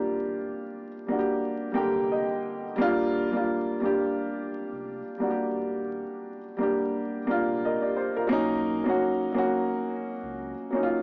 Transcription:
0.00 1.07 G3 medium
0.00 1.08 A#3 medium
0.00 1.10 D4 medium
0.00 2.81 F4 medium
0.00 0.92 G4 medium
0.04 0.53 D#1 loud
1.07 1.66 G3 medium
1.07 1.67 A#3 medium
1.07 1.68 D4 medium
1.12 1.17 F#4 medium
1.19 1.72 G4 medium
1.72 2.63 G3 medium
1.72 2.64 A#3 medium
1.72 2.07 G5 medium
1.76 2.65 D3 medium
1.76 2.66 G4 medium
1.95 2.26 F1 medium
2.12 2.76 D#5 medium
2.76 3.29 D#1 medium
2.76 3.22 G3 loud
2.76 3.23 A#3 medium
2.80 3.24 D4 medium
2.80 3.25 F4 loud
3.31 3.74 G3 medium
3.31 3.76 A#3 medium
3.31 3.76 D4 medium
3.37 3.77 F4 medium
3.80 4.99 G3 medium
3.80 5.00 A#3 medium
3.80 5.01 D4 medium
3.86 5.02 G4 medium
4.72 5.03 F1 medium
5.18 6.37 G3 medium
5.18 6.38 A#3 medium
5.18 6.39 D4 medium
5.23 5.29 F#4 medium
5.30 6.43 G4 medium
5.55 6.05 D#1 loud
6.57 7.17 G3 medium
6.57 7.18 A#3 medium
6.61 7.19 D4 medium
6.61 7.20 G4 medium
7.25 8.15 G3 medium
7.25 8.16 A#3 medium
7.29 8.17 D4 medium
7.29 7.64 F4 loud
7.47 7.78 F1 medium
7.65 7.82 A#4 medium
7.65 7.82 D#5 medium
7.82 7.96 G4 medium
7.82 7.96 D5 medium
7.96 8.15 G4 medium
7.96 8.15 C5 medium
8.16 8.49 F4 medium
8.16 8.49 A#4 medium
8.27 8.74 F#3 loud
8.27 8.74 A#3 loud
8.27 8.75 C#4 medium
8.31 8.81 B1 loud
8.31 8.76 D#4 loud
8.84 9.27 F#3 medium
8.84 9.28 A#3 medium
8.84 9.29 C#4 medium
8.89 9.30 F#4 medium
9.32 10.51 F#3 medium
9.32 10.52 A#3 medium
9.32 10.53 C#4 medium
9.38 10.54 F#4 loud
10.23 10.54 C#2 medium
10.71 11.02 F#3 medium
10.71 11.02 A#3 medium
10.71 11.02 C#4 medium
10.76 10.82 D#4 medium
10.83 11.02 F4 medium

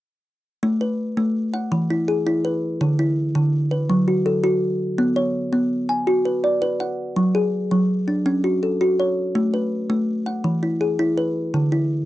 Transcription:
0.63 0.99 A3 medium
0.81 1.35 B4 medium
1.17 1.53 A3 medium
1.54 1.90 F#5 medium
1.72 2.08 E3 medium
1.90 2.25 E4 medium
2.08 2.62 G#4 medium
2.27 2.62 E4 medium
2.45 2.99 B4 medium
2.81 3.17 D3 medium
2.99 3.53 E4 medium
3.35 3.71 D3 medium
3.71 4.07 B4 medium
3.90 4.26 F#3 medium
4.08 4.42 F#4 medium
4.26 4.80 A4 medium
4.44 4.80 F#4 medium
4.98 5.34 B3 medium
5.16 5.71 C#5 medium
5.53 5.89 B3 medium
5.89 6.43 G#5 medium
6.07 6.43 F#4 medium
6.25 6.61 B4 medium
6.44 6.98 D5 medium
6.62 6.98 B4 medium
6.80 7.34 F#5 medium
7.16 7.53 F#3 medium
7.35 7.89 G#4 medium
7.71 8.07 F#3 medium
8.08 8.62 D4 medium
8.26 8.62 C#4 medium
8.44 8.80 F#4 medium
8.63 9.17 A4 medium
8.81 9.17 F#4 medium
9.00 9.54 C#5 medium
9.35 9.71 A3 medium
9.54 10.08 B4 medium
9.90 10.26 A3 medium
10.26 10.62 F#5 medium
10.44 10.81 E3 medium
10.63 10.98 E4 medium
10.81 11.35 G#4 medium
10.99 11.35 E4 medium
11.18 11.72 B4 medium
11.54 11.90 D3 medium
11.72 12.05 E4 medium

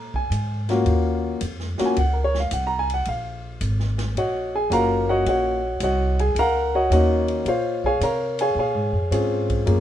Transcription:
0.00 0.29 A#2 medium
0.00 0.11 A#5 medium
0.14 0.83 G#5 medium
0.14 kick medium
0.30 0.84 G#2 medium
0.30 hi-hat pedal medium
0.30 ride medium
0.69 1.38 A#3 medium
0.69 1.39 C#4 medium
0.69 1.39 F4 medium
0.69 1.39 F#4 medium
0.69 snare soft
0.69 ride soft
0.85 1.39 D#2 medium
0.85 ride medium
1.41 1.77 F2 medium
1.41 hi-hat pedal medium
1.41 ride medium
1.60 snare soft
1.78 1.95 A#3 medium
1.78 1.95 C#4 medium
1.78 1.95 F4 medium
1.78 1.95 F#4 medium
1.78 muted upright bass stroke soft
1.78 snare soft
1.78 ride medium
1.86 1.95 G#5 medium
1.96 2.50 C#2 medium
1.96 2.16 F#5 medium
1.96 ride medium
2.13 2.33 A#4 medium
2.24 2.38 C#5 medium
2.34 snare soft
2.40 2.50 F5 medium
2.51 3.05 C2 medium
2.51 2.71 F#5 medium
2.51 hi-hat pedal medium
2.51 ride medium
2.67 2.87 A#5 loud
2.79 2.92 G#5 loud
2.90 ride medium
2.94 3.04 F#5 medium
3.05 3.60 A#1 medium
3.05 3.59 F5 medium
3.05 ride medium
3.61 4.14 G#1 medium
3.61 hi-hat pedal medium
3.61 ride medium
3.80 snare soft
3.98 snare soft
3.98 ride soft
4.15 4.69 A#1 medium
4.15 4.54 F#4 medium
4.15 4.54 C#5 medium
4.15 4.54 D#5 medium
4.15 4.54 F#5 medium
4.15 ride medium
4.55 4.71 G#4 medium
4.55 4.72 G#5 medium
4.70 5.24 F#1 medium
4.70 5.56 A#3 medium
4.70 5.57 C#4 medium
4.70 5.57 F4 medium
4.70 5.09 F#4 medium
4.70 5.09 A#4 medium
4.70 5.09 F5 medium
4.70 5.08 F#5 medium
4.70 5.09 A#5 loud
4.70 hi-hat pedal soft
4.70 ride medium
5.09 5.26 F#4 medium
5.09 5.26 C#5 medium
5.09 5.26 D#5 medium
5.09 5.26 F#5 loud
5.26 5.79 A#1 medium
5.26 5.82 F#4 medium
5.26 5.82 C#5 medium
5.26 5.82 D#5 medium
5.26 5.82 F#5 medium
5.26 ride medium
5.80 6.34 C2 medium
5.80 6.19 F#4 medium
5.80 6.19 C#5 medium
5.80 6.19 D#5 medium
5.80 6.19 F#5 medium
5.80 hi-hat pedal medium
5.80 ride medium
6.19 6.36 G#4 medium
6.19 6.36 G#5 medium
6.19 ride medium
6.35 6.89 C#2 medium
6.35 ride medium
6.39 6.75 A#4 medium
6.39 6.75 F5 medium
6.39 6.74 F#5 medium
6.39 6.75 A#5 loud
6.75 6.91 F#4 medium
6.75 6.91 C#5 medium
6.75 6.91 D#5 medium
6.75 6.91 F#5 medium
6.90 7.44 D#2 medium
6.90 7.46 A#3 medium
6.90 7.47 C#4 medium
6.90 7.46 D#4 medium
6.90 7.47 F#4 medium
6.90 7.47 C#5 medium
6.90 7.81 D#5 medium
6.90 7.43 F#5 medium
6.90 hi-hat pedal medium
6.90 ride medium
7.28 ride soft
7.45 7.99 A#2 medium
7.45 7.84 F4 medium
7.45 7.84 C5 medium
7.45 7.84 C#5 medium
7.45 7.84 F5 medium
7.45 ride medium
7.84 8.02 G#4 medium
7.84 8.02 C#5 medium
7.84 8.02 F5 medium
7.84 8.02 G#5 loud
7.84 kick soft
8.01 8.54 C3 medium
8.01 8.40 A#4 medium
8.01 8.39 C#5 medium
8.01 8.39 F5 medium
8.01 8.39 A#5 medium
8.01 hi-hat pedal medium
8.01 ride medium
8.39 8.57 G#4 medium
8.39 8.57 C#5 medium
8.39 8.57 F5 medium
8.39 8.57 G#5 medium
8.39 ride medium
8.55 8.75 A#2 medium
8.59 9.11 G#4 medium
8.59 9.47 C#5 medium
8.59 9.47 F5 medium
8.59 9.47 G#5 medium
8.75 8.92 G#2 medium
8.92 9.10 F2 medium
9.11 9.65 G#2 medium
9.11 9.66 C4 medium
9.11 9.65 C#4 medium
9.11 9.65 F4 medium
9.11 9.65 G#4 medium
9.11 hi-hat pedal medium
9.11 ride medium
9.50 kick medium
9.50 ride medium
9.66 9.80 F#2 medium
9.66 9.80 A#3 medium
9.66 9.80 C#4 medium
9.66 9.80 F4 medium
9.66 9.80 G#4 medium
9.66 ride medium

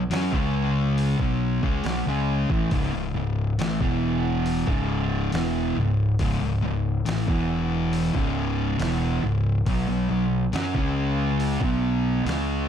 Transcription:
0.11 0.32 F#2 medium
0.11 0.33 F#3 medium
0.11 0.32 C#4 loud
0.11 snare loud
0.11 open hi-hat medium
0.32 1.16 C#2 loud
0.32 1.18 C#3 medium
0.32 1.19 G#3 loud
0.32 1.19 C#4 loud
0.32 kick loud
0.98 open hi-hat medium
1.19 1.60 B1 medium
1.19 1.62 B2 medium
1.19 1.62 F#3 medium
1.19 1.62 B3 loud
1.19 kick loud
1.63 1.84 C#2 medium
1.63 1.84 C#3 medium
1.63 1.85 G#3 loud
1.63 kick loud
1.84 2.05 B1 medium
1.84 2.06 B2 medium
1.84 2.06 F#3 medium
1.84 snare medium
1.84 open hi-hat soft
2.07 2.48 C#2 medium
2.07 2.50 C#3 loud
2.07 2.50 G#3 loud
2.07 2.50 C#4 loud
2.50 2.71 A1 medium
2.50 2.71 A2 medium
2.50 2.72 E3 loud
2.50 kick loud
2.71 2.92 C#1 loud
2.71 2.93 C#2 medium
2.71 2.93 G#2 loud
2.71 kick loud
2.71 open hi-hat medium
2.94 3.15 C#1 medium
2.94 3.15 C#2 medium
2.94 3.15 G#2 medium
3.15 3.56 C#1 medium
3.15 3.51 C#2 medium
3.15 3.51 G#2 medium
3.59 3.80 A1 medium
3.59 3.80 A2 loud
3.59 3.80 E3 loud
3.59 snare loud
3.59 open hi-hat medium
3.81 4.64 E1 loud
3.81 4.67 E2 medium
3.81 4.67 B2 loud
3.81 4.68 E3 medium
3.81 kick loud
4.46 open hi-hat medium
4.67 5.29 C#1 medium
4.67 5.32 C#2 medium
4.67 5.32 G#2 medium
4.67 5.33 C#3 medium
4.67 kick loud
5.32 5.74 E1 medium
5.32 5.75 E2 medium
5.32 5.76 B2 medium
5.32 5.76 E3 medium
5.32 snare loud
5.32 open hi-hat medium
5.76 6.17 C#1 medium
5.76 6.12 C#2 medium
5.76 6.12 G#2 medium
6.19 6.40 C#1 loud
6.19 6.40 C#2 medium
6.19 6.40 G#2 loud
6.19 kick medium
6.19 open hi-hat medium
6.41 6.62 C#1 medium
6.41 6.61 C#2 medium
6.41 6.62 G#2 medium
6.62 7.04 C#1 medium
6.62 6.98 C#2 medium
6.62 6.98 G#2 medium
7.05 7.27 A1 medium
7.05 7.26 A2 loud
7.05 7.27 E3 loud
7.05 snare loud
7.05 open hi-hat medium
7.27 8.11 E1 loud
7.27 8.13 E2 medium
7.27 8.14 B2 medium
7.27 8.14 E3 loud
7.27 kick loud
7.93 open hi-hat medium
8.14 8.76 C#1 medium
8.14 8.78 C#2 medium
8.14 8.79 G#2 loud
8.14 8.79 C#3 loud
8.14 kick loud
8.79 9.21 E1 medium
8.79 9.22 E2 medium
8.79 9.22 B2 medium
8.79 9.22 E3 medium
8.79 snare medium
8.79 open hi-hat medium
9.23 9.64 C#1 medium
9.23 9.58 C#2 medium
9.23 9.58 G#2 medium
9.66 9.87 B1 loud
9.66 9.86 B2 medium
9.66 9.87 F#3 loud
9.66 kick loud
9.66 open hi-hat medium
9.88 10.09 B1 medium
9.88 10.08 B2 medium
9.88 10.08 F#3 medium
10.09 10.51 B1 medium
10.09 10.45 B2 medium
10.09 10.45 F#3 medium
10.53 10.74 F#2 medium
10.53 10.74 F#3 loud
10.53 10.74 C#4 loud
10.53 snare loud
10.53 open hi-hat medium
10.74 11.58 C#2 loud
10.74 11.60 C#3 loud
10.74 11.60 G#3 loud
10.74 11.61 C#4 loud
10.74 kick loud
11.40 open hi-hat medium
11.60 12.22 B1 medium
11.60 12.24 B2 medium
11.60 12.24 F#3 medium
11.60 12.25 B3 medium
11.60 kick loud
12.25 12.66 C#2 loud
12.25 12.68 C#3 medium
12.25 12.68 G#3 medium
12.25 12.68 C#4 medium
12.25 open hi-hat medium
12.29 snare loud

